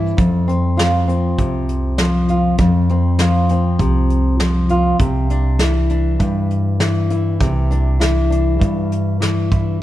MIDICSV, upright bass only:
0, 0, Header, 1, 2, 480
1, 0, Start_track
1, 0, Tempo, 603015
1, 135, Time_signature, 4, 2, 24, 8
1, 7820, End_track
2, 0, Start_track
2, 0, Title_t, "Upright bass"
2, 0, Program_c, 0, 32
2, 0, Note_on_c, 0, 43, 77
2, 109, Note_off_c, 0, 43, 0
2, 144, Note_on_c, 0, 41, 79
2, 1066, Note_off_c, 0, 41, 0
2, 1100, Note_on_c, 0, 36, 74
2, 2024, Note_off_c, 0, 36, 0
2, 2058, Note_on_c, 0, 41, 81
2, 2983, Note_off_c, 0, 41, 0
2, 3018, Note_on_c, 0, 36, 73
2, 3943, Note_off_c, 0, 36, 0
2, 3975, Note_on_c, 0, 36, 85
2, 4902, Note_off_c, 0, 36, 0
2, 4933, Note_on_c, 0, 43, 80
2, 5861, Note_off_c, 0, 43, 0
2, 5893, Note_on_c, 0, 36, 89
2, 6821, Note_off_c, 0, 36, 0
2, 6856, Note_on_c, 0, 43, 67
2, 7782, Note_off_c, 0, 43, 0
2, 7820, End_track
0, 0, End_of_file